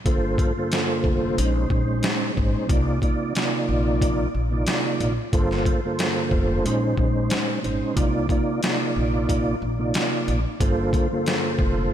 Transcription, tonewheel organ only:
0.04 0.52 G2 medium
0.04 0.52 D3 medium
0.04 0.52 A#3 medium
0.04 0.53 F4 medium
0.04 0.53 A4 medium
0.04 0.53 C5 loud
0.56 1.37 G2 medium
0.56 1.38 D3 medium
0.56 1.38 A#3 medium
0.56 1.38 F4 medium
0.56 1.38 A4 medium
0.56 1.38 C5 loud
1.37 1.67 A#2 medium
1.37 1.68 G#3 medium
1.37 1.68 C#4 medium
1.37 1.69 D#4 medium
1.37 1.69 C5 loud
1.69 2.31 A#2 medium
1.69 2.31 G#3 medium
1.69 2.31 C#4 medium
1.69 2.32 D#4 medium
1.69 2.32 C5 loud
2.34 2.66 A#2 medium
2.34 2.66 G#3 medium
2.34 2.67 C#4 medium
2.34 2.67 D#4 medium
2.34 2.67 C5 medium
2.67 2.99 C3 medium
2.67 2.99 A#3 medium
2.67 2.99 D#4 medium
2.67 3.00 F4 medium
2.67 3.00 D5 medium
3.01 3.32 C3 medium
3.01 3.33 A#3 medium
3.01 3.33 D#4 medium
3.01 3.33 F4 medium
3.01 3.34 D5 loud
3.35 4.27 C3 medium
3.35 4.27 A#3 medium
3.35 4.28 D#4 medium
3.35 4.28 F4 medium
3.35 4.28 D5 loud
4.51 5.12 C3 medium
4.51 5.12 A#3 medium
4.51 5.12 D#4 medium
4.51 5.13 F4 medium
4.51 5.13 D5 loud
5.32 5.79 G2 medium
5.32 5.80 D3 medium
5.32 5.80 A#3 medium
5.32 5.80 F4 medium
5.32 5.80 A4 medium
5.32 5.81 C5 loud
5.84 6.65 G2 medium
5.84 6.65 D3 medium
5.84 6.65 A#3 medium
5.84 6.66 F4 medium
5.84 6.66 A4 medium
5.84 6.66 C5 loud
6.64 6.95 A#2 medium
6.64 6.95 G#3 medium
6.64 6.96 C#4 medium
6.64 6.96 D#4 medium
6.64 6.97 C5 loud
6.96 7.58 A#2 medium
6.96 7.59 G#3 medium
6.96 7.59 C#4 medium
6.96 7.59 D#4 medium
6.96 7.60 C5 loud
7.62 7.93 A#2 medium
7.62 7.94 G#3 medium
7.62 7.94 C#4 medium
7.62 7.94 D#4 medium
7.62 7.95 C5 medium
7.94 8.26 C3 medium
7.94 8.26 A#3 medium
7.94 8.27 D#4 medium
7.94 8.27 F4 medium
7.94 8.27 D5 medium
8.29 8.60 C3 loud
8.29 8.60 A#3 medium
8.29 8.61 D#4 medium
8.29 8.61 F4 medium
8.29 8.61 D5 loud
8.63 9.55 C3 medium
8.63 9.55 A#3 medium
8.63 9.55 D#4 medium
8.63 9.56 F4 medium
8.63 9.56 D5 loud
9.78 10.39 C3 medium
9.78 10.40 A#3 medium
9.78 10.40 D#4 medium
9.78 10.40 F4 medium
9.78 10.41 D5 loud
10.59 11.07 G2 medium
10.59 11.07 D3 medium
10.59 11.07 A#3 medium
10.59 11.08 F4 medium
10.59 11.08 A4 medium
10.59 11.08 C5 loud
11.11 11.92 G2 medium
11.11 11.92 D3 medium
11.11 11.93 A#3 medium
11.11 11.93 F4 medium
11.11 11.93 A4 medium
11.11 11.93 C5 loud

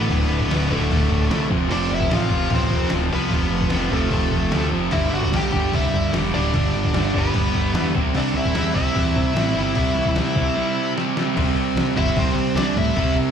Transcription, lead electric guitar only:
0.00 0.67 B3 medium
0.00 0.74 B4 medium
0.71 1.47 A3 medium
0.71 1.47 A4 medium
1.72 1.90 D4 medium
1.72 1.93 D5 medium
1.94 2.11 E4 medium
1.94 2.11 E5 medium
2.13 2.49 F4 medium
2.13 2.53 F5 medium
2.55 2.90 C4 medium
2.55 2.91 C5 loud
3.14 3.89 B3 medium
3.14 3.95 B4 medium
3.91 4.68 A3 medium
3.91 4.69 A4 medium
4.93 5.11 E4 medium
4.93 5.14 E5 medium
5.15 5.33 F#4 medium
5.15 5.34 F#5 medium
5.37 5.73 G4 medium
5.37 5.75 G5 loud
5.75 6.12 E4 medium
5.75 6.12 E5 loud
6.34 7.11 D4 medium
6.34 7.17 D5 loud
7.18 7.93 B3 medium
7.18 7.93 B4 medium
8.17 8.35 D4 medium
8.17 8.37 D5 medium
8.37 8.74 E4 medium
8.37 8.74 E5 loud
8.75 10.93 E4 medium
8.75 10.92 E5 medium
11.98 12.16 E4 medium
11.98 12.18 E5 loud
12.17 12.54 C4 medium
12.17 12.56 C5 medium
12.56 12.75 D4 medium
12.56 12.77 D5 medium
12.78 13.15 E4 medium
12.78 13.15 E5 medium

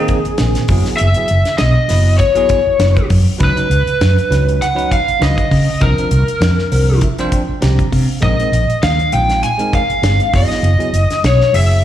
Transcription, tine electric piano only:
0.00 0.17 D#3 loud
0.00 0.18 A#3 loud
0.00 0.18 C4 loud
0.00 0.18 D#4 loud
0.27 0.33 C4 soft
0.27 0.34 G#4 soft
0.40 0.63 D#3 medium
0.40 0.63 A#3 medium
0.40 0.64 C4 medium
0.40 0.64 G#4 medium
0.69 1.06 F#3 medium
0.69 1.07 B3 medium
0.69 1.07 E4 medium
0.69 1.07 G#4 medium
1.16 1.26 F#3 medium
1.16 1.27 B3 medium
1.16 1.27 E4 medium
1.16 1.27 G#4 medium
1.30 1.38 G#4 soft
1.88 2.23 F#3 medium
1.88 2.24 B3 medium
1.88 2.24 E4 medium
1.88 2.24 B4 medium
2.35 2.58 F#3 medium
2.35 2.58 B3 medium
2.35 2.59 E4 medium
2.35 2.59 G#4 loud
2.65 2.72 E4 soft
2.65 2.73 G#4 soft
2.78 3.03 F#3 medium
2.78 3.03 B3 medium
2.78 3.03 E4 medium
2.78 3.03 B4 medium
3.08 3.17 E4 soft
3.08 3.18 A#4 soft
3.38 3.52 F#3 medium
3.38 3.52 C#4 medium
3.38 3.52 D#4 medium
3.38 3.52 B4 medium
3.56 3.67 F#3 medium
3.56 3.67 C#4 medium
3.56 3.67 D#4 medium
3.56 3.68 B4 medium
3.70 3.78 D#4 soft
3.70 3.79 B4 soft
4.30 4.65 F#3 medium
4.30 4.65 C#4 medium
4.30 4.65 D#4 medium
4.30 4.65 B4 medium
4.75 4.98 F#3 medium
4.75 4.98 C#4 medium
4.75 4.99 D#4 medium
4.75 4.99 B4 loud
5.05 5.13 D#4 soft
5.05 5.14 B4 soft
5.19 5.44 F#3 medium
5.19 5.44 C#4 medium
5.19 5.44 D#4 medium
5.19 5.44 B4 medium
5.51 5.59 D#4 soft
5.51 5.60 B4 soft
5.80 5.93 F3 medium
5.80 5.94 C4 medium
5.80 5.94 D4 medium
5.80 5.94 A#4 medium
5.98 6.08 F3 medium
5.98 6.09 C4 medium
5.98 6.09 D4 medium
5.98 6.09 A#4 medium
6.14 6.21 A4 soft
6.71 7.06 F3 medium
6.71 7.06 C4 medium
6.71 7.06 D4 medium
6.71 7.06 A#4 medium
6.71 6.87 C5 medium
6.89 7.02 D5 medium
7.04 7.18 E5 medium
7.19 7.41 F3 loud
7.19 7.41 C4 loud
7.19 7.41 D4 loud
7.19 7.41 C5 loud
7.19 7.32 F5 medium
7.33 7.61 G5 medium
7.48 7.55 D4 soft
7.48 7.56 A4 soft
7.61 7.85 F3 medium
7.61 7.85 C4 medium
7.61 7.85 D4 medium
7.61 7.86 G4 medium
7.61 7.90 A#5 medium
7.92 8.00 D4 soft
7.92 8.01 A#4 soft
7.92 8.21 F5 medium
8.21 8.34 G#3 medium
8.21 8.34 C4 medium
8.21 8.35 D#4 medium
8.21 8.35 A#4 medium
8.39 8.49 G#3 medium
8.39 8.50 C4 medium
8.39 8.50 D#4 medium
8.39 8.50 A#4 medium
8.52 8.61 D#4 soft
8.52 8.61 A#4 soft
9.12 9.47 G#3 medium
9.12 9.47 C4 medium
9.12 9.48 D#4 soft
9.12 9.48 F4 medium
9.58 9.81 G#3 medium
9.58 9.81 C4 medium
9.58 9.82 D#4 medium
9.58 9.82 A#4 medium
9.89 9.96 D#4 soft
9.89 9.97 A#4 soft
10.02 10.26 G#3 medium
10.02 10.26 C4 medium
10.02 10.26 D#4 medium
10.02 10.27 G#4 medium
10.33 10.70 F#3 medium
10.33 10.70 B3 medium
10.33 10.71 E4 medium
10.33 10.71 G#4 medium
10.78 10.90 F#3 medium
10.78 10.90 B3 medium
10.78 10.90 E4 medium
10.78 10.90 G#4 medium
11.53 11.84 F#3 medium
11.53 11.84 B3 soft
11.53 11.84 E4 medium
11.53 11.84 G#4 medium

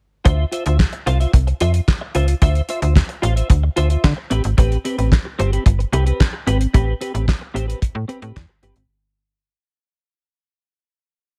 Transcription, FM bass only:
0.25 0.45 D2 loud
0.66 0.86 D2 loud
1.07 1.26 C2 loud
1.34 1.53 C2 medium
1.61 1.80 F2 medium
2.15 2.34 C#2 medium
2.42 2.61 D2 loud
2.82 3.02 D2 loud
3.23 3.42 A1 loud
3.50 3.69 D2 loud
3.78 3.97 D2 medium
4.04 4.14 D3 loud
4.31 4.41 A1 medium
4.45 4.54 G#1 medium
4.58 4.77 A1 loud
4.98 5.18 A1 medium
5.40 5.59 G1 medium
5.66 5.85 G1 medium
5.93 6.12 C2 loud
6.47 6.66 G#1 loud
6.74 6.94 A1 loud
7.15 7.34 A1 medium
7.55 7.74 A1 medium
7.95 8.05 A2 loud
8.22 8.32 A2 loud
8.36 8.46 E2 loud
8.63 8.73 G1 medium
8.76 8.86 G#1 medium

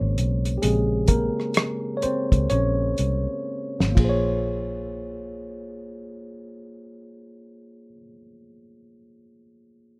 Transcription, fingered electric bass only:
0.01 0.15 G#1 medium
0.18 0.57 B1 medium
0.63 1.29 A#1 medium
2.04 muted fingered electric bass stroke soft
2.32 2.48 C#2 medium
2.51 2.93 A#1 medium
2.99 3.26 C2 medium
3.81 3.96 G#1 medium
3.97 7.96 A#1 medium

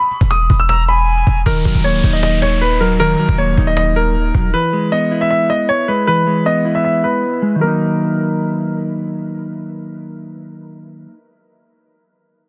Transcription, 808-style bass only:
0.21 0.49 E1 loud
0.50 1.24 E1 loud
1.27 1.45 E1 loud
1.46 1.64 D#1 loud
1.65 1.74 D#1 loud
1.75 1.96 D#1 loud
1.94 2.03 C#1 loud
2.04 3.15 D#1 loud
3.29 3.56 D#1 loud
3.58 4.31 D#1 loud
4.35 4.53 D#1 loud

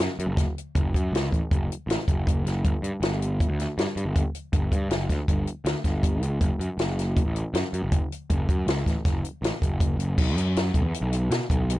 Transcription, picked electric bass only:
0.19 0.26 F#2 medium
0.27 0.44 F#1 medium
0.76 0.92 F#1 medium
0.94 1.11 F#2 medium
1.12 1.29 C#2 medium
1.33 1.40 A1 medium
1.51 1.68 F#1 medium
1.87 1.96 A1 medium
2.08 2.41 F#1 medium
2.45 2.62 F#1 medium
2.65 2.73 G1 loud
2.82 2.91 G2 medium
3.01 3.44 G1 medium
3.49 3.66 D2 medium
3.78 3.86 G2 loud
3.96 4.04 G2 medium
4.06 4.22 G1 medium
4.53 4.70 G1 medium
4.72 4.89 G2 medium
4.89 5.07 F#1 medium
5.10 5.18 D2 medium
5.28 5.45 G1 loud
5.65 5.73 D2 loud
5.85 6.22 G1 medium
6.22 6.39 C#2 medium
6.41 6.49 F#1 loud
6.59 6.68 F#2 medium
6.78 7.21 F#1 medium
7.25 7.42 A1 medium
7.54 7.62 F#2 medium
7.73 7.81 F#2 medium
7.83 7.99 F#1 medium
8.30 8.47 F#1 loud
8.49 8.65 F#2 medium
8.67 8.84 C#2 medium
8.86 8.95 A1 medium
9.05 9.22 F#1 medium
9.42 9.51 A1 medium
9.62 9.96 F#1 medium
9.97 10.15 F#1 medium
10.18 10.35 B1 loud
10.35 10.70 F#2 loud
10.75 10.81 B1 medium
10.82 10.91 E2 medium
11.01 11.27 B1 medium
11.31 11.39 B2 loud
11.50 11.75 B1 medium

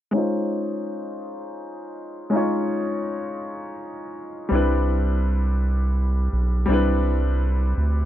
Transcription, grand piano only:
0.11 2.27 G#3 medium
0.11 2.28 C#4 medium
0.11 2.28 D#4 medium
0.16 2.29 F4 soft
0.16 2.30 C5 medium
2.30 4.45 G#3 medium
2.30 4.46 C#4 medium
2.30 4.47 D#4 soft
2.35 4.48 F4 medium
2.35 4.48 C#5 medium
4.49 6.64 G3 medium
4.49 6.64 C4 medium
4.49 6.65 D4 medium
4.54 6.66 E4 medium
4.54 6.67 B4 medium
6.66 8.05 G3 medium
6.66 8.05 C4 medium
6.66 8.05 D4 medium
6.72 8.05 E4 medium
6.72 8.05 B4 medium

